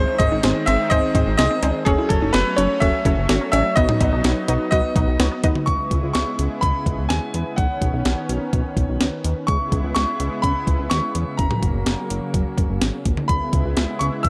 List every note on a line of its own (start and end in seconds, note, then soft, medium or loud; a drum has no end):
0.00 1.85 D#3 medium
0.00 1.85 G#3 medium
0.00 0.16 C4 loud
0.00 1.85 C4 medium
0.00 0.16 D#4 medium
0.00 0.16 G#4 medium
0.00 0.16 C5 loud
0.00 0.20 C5 loud
0.08 0.26 D#4 medium
0.18 0.29 G#1 loud
0.18 0.40 C4 medium
0.18 0.40 D#4 medium
0.18 0.40 G#4 medium
0.18 0.40 C5 medium
0.18 0.68 D#5 loud
0.18 kick loud
0.18 closed hi-hat medium
0.32 0.41 G#1 loud
0.32 0.50 D#4 medium
0.43 0.53 G#1 medium
0.43 0.63 C4 medium
0.43 0.63 D#4 medium
0.43 0.63 G#4 medium
0.43 0.64 C5 medium
0.43 snare loud
0.43 closed hi-hat medium
0.66 0.77 G#1 loud
0.66 0.86 C4 medium
0.66 0.87 C4 medium
0.66 0.87 D#4 medium
0.66 0.87 G#4 medium
0.66 0.87 C5 medium
0.66 0.91 E5 loud
0.66 closed hi-hat medium
0.90 1.01 G#1 loud
0.90 1.10 C4 medium
0.90 1.11 C4 loud
0.90 1.11 D#4 medium
0.90 1.11 G#4 medium
0.90 1.11 C5 loud
0.90 1.36 D#5 loud
0.90 kick loud
0.90 closed hi-hat medium
1.15 1.24 G#1 loud
1.15 1.35 C4 medium
1.15 1.35 D#4 medium
1.15 1.33 D#4 medium
1.15 1.35 G#4 medium
1.15 1.35 C5 medium
1.15 kick medium
1.15 closed hi-hat medium
1.27 1.36 G#1 loud
1.37 1.48 C2 loud
1.37 1.59 C4 medium
1.37 1.59 D#4 medium
1.37 1.59 G#4 medium
1.37 1.59 C5 medium
1.37 1.71 D#5 loud
1.37 snare loud
1.37 closed hi-hat medium
1.51 1.60 C4 medium
1.63 1.72 C#2 medium
1.63 1.81 C4 medium
1.63 1.83 C4 medium
1.63 1.83 D#4 medium
1.63 1.83 G#4 medium
1.63 1.83 C5 medium
1.63 closed hi-hat medium
1.63 cowbell medium
1.85 1.96 F#1 loud
1.85 5.64 F#3 medium
1.85 3.75 A3 medium
1.85 1.96 C#4 loud
1.85 3.75 C#4 medium
1.85 2.06 C#4 loud
1.85 2.06 F#4 medium
1.85 2.08 G#4 medium
1.85 2.06 A4 medium
1.85 2.06 C#5 loud
1.85 kick loud
1.85 closed hi-hat medium
1.98 2.17 E4 medium
2.09 2.20 F#1 loud
2.09 2.30 C#4 medium
2.09 2.30 F#4 medium
2.09 2.32 A4 medium
2.09 2.30 A4 medium
2.09 2.30 C#5 medium
2.09 kick loud
2.09 closed hi-hat medium
2.22 2.32 F#1 medium
2.22 2.40 D#4 medium
2.33 2.44 F#1 loud
2.33 2.54 C#4 medium
2.33 2.54 F#4 medium
2.33 2.54 A4 medium
2.33 2.58 B4 loud
2.33 2.54 C#5 medium
2.33 snare loud
2.33 closed hi-hat medium
2.56 2.67 F#1 loud
2.56 2.78 C#4 medium
2.56 2.76 C#4 medium
2.56 2.78 F#4 medium
2.56 2.78 A4 medium
2.56 2.82 C#5 medium
2.56 2.78 C#5 medium
2.56 closed hi-hat medium
2.80 2.91 F#1 loud
2.80 3.02 C#4 loud
2.80 3.00 C#4 medium
2.80 3.02 F#4 medium
2.80 3.02 A4 medium
2.80 3.02 C#5 loud
2.80 3.50 E5 loud
2.80 kick loud
2.80 closed hi-hat medium
3.05 3.15 F#1 loud
3.05 3.25 C#4 medium
3.05 3.24 E4 medium
3.05 3.25 F#4 medium
3.05 3.25 A4 medium
3.05 3.25 C#5 medium
3.05 kick medium
3.05 closed hi-hat medium
3.17 3.27 F#1 loud
3.29 3.39 G#1 loud
3.29 3.49 C#4 medium
3.29 3.49 F#4 medium
3.29 3.49 A4 medium
3.29 3.49 C#5 medium
3.29 snare loud
3.29 closed hi-hat medium
3.41 3.50 C#4 medium
3.52 3.63 A1 loud
3.52 3.73 C#4 medium
3.52 3.71 C#4 medium
3.52 3.73 F#4 medium
3.52 3.73 A4 medium
3.52 3.73 C#5 medium
3.52 3.77 E5 loud
3.52 closed hi-hat medium
3.52 cowbell medium
3.76 3.86 B1 loud
3.76 3.86 B3 loud
3.76 5.66 B3 medium
3.76 3.97 D#4 loud
3.76 5.66 D#4 medium
3.76 3.97 F#4 medium
3.76 3.97 B4 medium
3.76 4.69 D#5 loud
3.76 3.97 D#5 loud
3.76 kick loud
3.76 closed hi-hat medium
3.89 4.07 D#4 medium
3.89 mid tom loud
4.01 4.10 B1 loud
4.01 4.21 D#4 medium
4.01 4.21 F#4 medium
4.01 4.21 B4 medium
4.01 4.21 D#5 medium
4.01 kick medium
4.01 closed hi-hat medium
4.01 cowbell medium
4.13 4.22 B1 loud
4.13 4.31 D#4 medium
4.24 4.34 B1 loud
4.24 4.44 D#4 medium
4.24 4.44 F#4 medium
4.24 4.44 B4 medium
4.24 4.44 C#5 medium
4.24 snare loud
4.24 closed hi-hat medium
4.48 4.58 B1 loud
4.48 4.67 B3 medium
4.48 4.68 D#4 medium
4.48 4.68 F#4 medium
4.48 4.68 B4 medium
4.48 4.68 D#5 loud
4.48 closed hi-hat medium
4.71 4.82 B1 loud
4.71 4.90 B3 medium
4.71 4.92 D#4 loud
4.71 4.92 F#4 medium
4.71 4.92 B4 medium
4.71 5.39 D#5 medium
4.71 4.92 D#5 loud
4.71 kick loud
4.71 closed hi-hat medium
4.96 5.05 B1 medium
4.96 5.16 D#4 medium
4.96 5.14 D#4 medium
4.96 5.16 F#4 medium
4.96 5.16 B4 medium
4.96 5.16 D#5 medium
4.96 kick medium
4.96 closed hi-hat medium
5.08 5.17 B1 loud
5.20 5.29 C#2 loud
5.20 5.40 D#4 medium
5.20 5.40 F#4 medium
5.20 5.40 B4 medium
5.20 5.40 C#5 medium
5.20 snare loud
5.20 closed hi-hat medium
5.32 5.41 B3 medium
5.44 5.53 D#2 loud
5.44 5.62 B3 medium
5.44 5.64 D#4 medium
5.44 5.63 F#4 medium
5.44 5.63 B4 medium
5.44 5.64 D#5 loud
5.44 kick loud
5.44 closed hi-hat medium
5.55 mid tom medium
5.66 5.77 C#2 loud
5.66 7.56 C#3 medium
5.66 7.56 G#3 medium
5.66 9.45 B3 medium
5.66 7.56 E4 medium
5.66 6.12 C#6 loud
5.66 kick loud
5.66 closed hi-hat medium
5.91 6.01 C#2 medium
5.91 kick medium
5.91 closed hi-hat medium
6.03 6.13 C#2 medium
6.13 6.24 C#2 medium
6.13 6.63 C#6 medium
6.13 snare loud
6.13 closed hi-hat medium
6.39 6.48 C#2 loud
6.39 closed hi-hat medium
6.61 6.72 C#2 loud
6.61 7.11 B5 medium
6.61 kick medium
6.61 closed hi-hat medium
6.86 6.96 C#2 loud
6.86 kick medium
6.86 closed hi-hat medium
6.98 7.08 C#2 medium
7.09 7.20 D#2 medium
7.09 7.59 G#5 medium
7.09 snare loud
7.09 closed hi-hat medium
7.34 7.43 E2 loud
7.34 closed hi-hat medium
7.56 7.67 B1 loud
7.56 9.46 D#3 medium
7.56 9.46 C#4 medium
7.56 9.20 F#5 medium
7.56 kick loud
7.56 closed hi-hat medium
7.82 7.91 B1 medium
7.82 kick medium
7.82 closed hi-hat medium
7.94 8.03 B1 medium
8.05 8.15 B1 medium
8.05 snare loud
8.05 closed hi-hat medium
8.29 8.39 B1 loud
8.29 closed hi-hat medium
8.53 8.63 B1 loud
8.53 kick medium
8.53 closed hi-hat medium
8.77 8.86 B1 medium
8.77 kick medium
8.77 closed hi-hat medium
8.89 8.98 B1 medium
9.01 9.10 C#2 loud
9.01 snare loud
9.01 closed hi-hat medium
9.24 9.34 D#2 medium
9.24 closed hi-hat medium
9.47 9.58 C#2 loud
9.47 14.29 C#3 medium
9.47 11.37 G#3 medium
9.47 11.37 B3 medium
9.47 11.37 E4 medium
9.47 9.92 C#6 loud
9.47 kick loud
9.47 closed hi-hat medium
9.72 9.82 C#2 loud
9.72 kick medium
9.72 closed hi-hat medium
9.84 9.94 C#2 medium
9.95 10.05 C#2 medium
9.95 10.44 C#6 loud
9.95 snare loud
9.95 closed hi-hat medium
10.20 10.29 C#2 loud
10.20 closed hi-hat medium
10.42 10.53 C#2 medium
10.42 10.92 B5 medium
10.42 kick medium
10.42 closed hi-hat medium
10.67 10.77 C#2 loud
10.67 kick medium
10.67 closed hi-hat medium
10.79 10.89 C#2 medium
10.90 11.01 D#2 loud
10.90 11.35 C#6 loud
10.90 snare loud
10.90 closed hi-hat medium
11.15 11.25 E2 medium
11.15 closed hi-hat medium
11.37 11.48 F#1 loud
11.37 13.27 F#3 medium
11.37 13.27 A#3 medium
11.37 13.01 A#5 medium
11.37 kick loud
11.37 closed hi-hat medium
11.51 mid tom medium
11.62 11.72 F#1 loud
11.62 kick medium
11.62 closed hi-hat medium
11.75 11.84 F#1 medium
11.86 11.96 F#1 loud
11.86 snare loud
11.86 closed hi-hat medium
12.10 12.20 F#1 loud
12.10 closed hi-hat medium
12.34 12.43 F#1 medium
12.34 kick medium
12.34 closed hi-hat medium
12.58 12.67 F#1 medium
12.58 kick medium
12.58 closed hi-hat medium
12.70 12.79 F#1 loud
12.82 12.91 G#1 loud
12.82 snare loud
12.82 closed hi-hat medium
13.05 13.15 A#1 medium
13.05 kick medium
13.05 closed hi-hat medium
13.17 mid tom medium
13.28 13.39 C#2 loud
13.28 14.29 G#3 medium
13.28 14.29 B3 medium
13.28 14.29 E4 medium
13.28 14.02 B5 medium
13.28 kick loud
13.28 closed hi-hat medium
13.53 13.62 C#2 medium
13.53 kick medium
13.53 closed hi-hat medium
13.65 13.75 C#2 medium
13.77 13.86 C#2 loud
13.77 snare loud
13.77 closed hi-hat medium
13.99 14.10 C#2 medium
13.99 14.05 C#6 medium
13.99 closed hi-hat medium
14.23 14.29 C#2 loud
14.23 14.29 E6 loud
14.23 kick medium
14.23 closed hi-hat medium